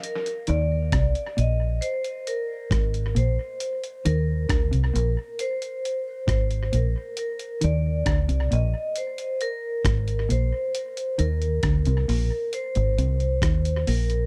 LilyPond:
<<
  \new Staff \with { instrumentName = "Vibraphone" } { \time 4/4 \key aes \lydian \tempo 4 = 67 bes'8 d''4 ees''8 c''8 bes'4 c''8~ | c''8 bes'4 bes'8 c''4 c''8 bes'8 | bes'8 d''4 ees''8 c''8 bes'4 c''8~ | c''8 bes'4 bes'8 c''4. bes'8 | }
  \new Staff \with { instrumentName = "Clean electric guitar" } { \clef bass \time 4/4 \key aes \lydian r8 ees8 c16 r16 bes,8 r4 aes,8 bes,16 r16 | r8 ees8 d16 c16 bes,16 r4 r16 aes,8 bes,16 r16 | r8 ees8 d16 c16 bes,16 r4 r16 aes,8 bes,16 r16 | r8 ees8 d16 c16 bes,16 r8 aes,16 c8 ees8 bes,8 | }
  \new Staff \with { instrumentName = "Fingered electric bass" } { \clef bass \time 4/4 \key aes \lydian r8 ees,8 c,16 r16 bes,,8 r4 aes,,8 bes,,16 r16 | r8 ees,8 d,16 c,16 bes,,16 r4 r16 aes,,8 bes,,16 r16 | r8 ees,8 d,16 c,16 bes,,16 r4 r16 aes,,8 bes,,16 r16 | r8 ees,8 d,16 c,16 bes,,16 r8 aes,,16 c,8 ees,8 bes,,8 | }
  \new DrumStaff \with { instrumentName = "Drums" } \drummode { \time 4/4 hh16 hh16 hh8 <hh bd ss>16 hh16 hh8 hh16 hh16 hh8 <hh bd ss>16 hh16 hh8 | hh16 hh16 hh8 <hh bd ss>16 hh16 hh8 hh16 hh16 hh8 <hh bd ss>16 hh16 hh8 | hh16 hh16 hh8 <hh bd ss>16 hh16 hh8 hh16 hh16 hh8 <hh bd ss>16 hh16 hh8 | hh16 hh16 hh16 hh16 <hh bd ss>16 hh16 hho8 hh16 hh16 hh16 hh16 <hh bd ss>16 hh16 hho16 hh16 | }
>>